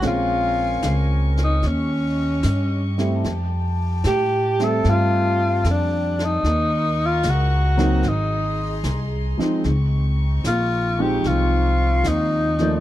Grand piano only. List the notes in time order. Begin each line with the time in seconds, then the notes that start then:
0.02 G#3 C4 C#4 F4
2.98 G3 A3 C4 E4
4.59 G3 A3 C4 E5
7.77 F#3 A#3 C4 D#4
9.37 F3 G#3 C4 D#4
10.99 F3 G#3 C4 D#4
12.60 F3 A3 A#3 D5